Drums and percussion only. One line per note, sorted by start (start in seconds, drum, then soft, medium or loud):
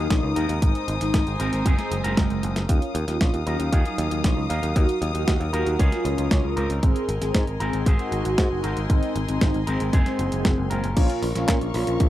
0.10 kick loud
0.10 snare loud
0.10 closed hi-hat medium
0.36 closed hi-hat medium
0.49 closed hi-hat medium
0.62 kick loud
0.62 closed hi-hat medium
0.75 closed hi-hat soft
0.88 closed hi-hat medium
1.01 snare soft
1.01 closed hi-hat medium
1.14 kick loud
1.14 snare loud
1.14 closed hi-hat medium
1.27 closed hi-hat soft
1.40 closed hi-hat medium
1.53 closed hi-hat medium
1.66 kick loud
1.66 closed hi-hat medium
1.79 snare soft
1.79 closed hi-hat soft
1.92 closed hi-hat medium
2.04 closed hi-hat medium
2.17 kick loud
2.17 snare loud
2.17 closed hi-hat medium
2.30 closed hi-hat soft
2.43 closed hi-hat medium
2.56 snare medium
2.56 closed hi-hat medium
2.69 kick loud
2.69 closed hi-hat medium
2.82 closed hi-hat soft
2.95 closed hi-hat medium
3.08 snare soft
3.08 closed hi-hat medium
3.21 kick loud
3.21 snare loud
3.21 closed hi-hat medium
3.34 closed hi-hat soft
3.47 closed hi-hat medium
3.60 closed hi-hat medium
3.73 kick loud
3.73 closed hi-hat medium
3.85 closed hi-hat soft
3.98 closed hi-hat medium
4.11 closed hi-hat medium
4.24 kick loud
4.24 snare loud
4.24 closed hi-hat medium
4.50 closed hi-hat medium
4.63 closed hi-hat medium
4.76 kick loud
4.76 closed hi-hat medium
4.89 closed hi-hat soft
5.02 closed hi-hat medium
5.15 closed hi-hat medium
5.28 kick loud
5.28 snare loud
5.28 closed hi-hat medium
5.41 closed hi-hat soft
5.54 closed hi-hat medium
5.67 closed hi-hat medium
5.79 kick loud
5.79 closed hi-hat medium
5.92 snare soft
5.92 closed hi-hat soft
6.05 closed hi-hat medium
6.18 closed hi-hat medium
6.31 kick loud
6.31 snare loud
6.31 closed hi-hat medium
6.57 closed hi-hat medium
6.70 closed hi-hat medium
6.83 kick loud
6.83 closed hi-hat medium
6.96 closed hi-hat soft
7.09 closed hi-hat medium
7.22 snare soft
7.22 closed hi-hat medium
7.35 kick loud
7.35 snare loud
7.35 closed hi-hat medium
7.47 closed hi-hat soft
7.60 closed hi-hat medium
7.73 closed hi-hat medium
7.86 kick loud
7.86 closed hi-hat medium
7.99 closed hi-hat soft
8.12 closed hi-hat medium
8.25 closed hi-hat medium
8.38 kick loud
8.38 snare loud
8.38 closed hi-hat medium
8.64 closed hi-hat medium
8.77 closed hi-hat medium
8.90 kick loud
8.90 closed hi-hat medium
9.03 closed hi-hat soft
9.16 closed hi-hat medium
9.29 closed hi-hat medium
9.41 kick loud
9.41 snare loud
9.41 closed hi-hat medium
9.54 closed hi-hat soft
9.67 closed hi-hat medium
9.80 closed hi-hat medium
9.93 kick loud
9.93 closed hi-hat medium
10.06 snare soft
10.06 closed hi-hat soft
10.19 closed hi-hat medium
10.32 closed hi-hat medium
10.45 kick loud
10.45 snare loud
10.45 closed hi-hat medium
10.71 closed hi-hat medium
10.84 closed hi-hat medium
10.97 kick loud
10.97 closed hi-hat medium
10.97 crash loud
11.10 closed hi-hat soft
11.23 open hi-hat loud
11.35 snare soft
11.35 closed hi-hat medium
11.48 kick loud
11.48 snare loud
11.48 clap loud
11.48 closed hi-hat medium
11.61 closed hi-hat soft
11.74 open hi-hat medium
11.87 closed hi-hat medium
12.00 kick loud
12.00 closed hi-hat medium